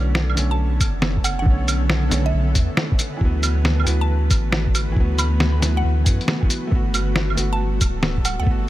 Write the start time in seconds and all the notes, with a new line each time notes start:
Already playing: B1 D3 A3 B3 C#4 A4 C#5
0.15 snare
0.30 claves
0.35 B1 D3 A3 C#4, closed hi-hat, cabasa
0.51 A5
0.81 F#1, kick, closed hi-hat, cabasa, claves
1.02 snare
1.17 kick
1.24 F#5, closed hi-hat, cabasa, claves
1.39 F#1 D3 F#5
1.46 B1 A3 B4, kick
1.50 C#4
1.68 closed hi-hat, cabasa, claves
1.90 snare
2.09 B1 D3 A3, snare, closed hi-hat, cabasa
2.13 C#4
2.26 E5
2.34 B1
2.55 E2, kick, closed hi-hat, cabasa
2.77 snare
2.92 kick
2.99 closed hi-hat, cabasa
3.17 E3
3.21 D2 F#3 A3 F#4, kick
3.25 B3
3.43 closed hi-hat, cabasa, claves
3.65 snare
3.80 claves
3.84 D2 E3 F#3, closed hi-hat, cabasa
3.88 B3
4.01 A5
4.31 A1, kick, closed hi-hat, cabasa, claves
4.52 snare
4.67 kick
4.75 closed hi-hat, cabasa, claves
4.89 A1 E3
4.96 D2 F#3, kick
5.00 B3
5.18 B5, closed hi-hat, cabasa, claves
5.40 snare
5.60 D2 E3 F#3, snare, closed hi-hat, cabasa
5.64 B3
5.77 F#5
5.84 D2
6.04 F#2 E3 F#3 B3, kick, closed hi-hat, cabasa
6.21 closed hi-hat
6.28 snare
6.40 E3 F#3 B3, kick
6.50 closed hi-hat, cabasa
6.67 A3 B3
6.72 G1 G3 B3 F#4 A4, kick
6.94 closed hi-hat, cabasa, claves
7.16 snare
7.30 claves
7.35 G1 A3 B3 F#4, closed hi-hat, cabasa
7.53 A5
7.81 D1, kick, closed hi-hat, cabasa, claves
8.03 snare
8.18 kick
8.25 F#5, closed hi-hat, cabasa, claves
8.40 D2 A3 F#5
8.46 G1 B3, kick
8.51 F#4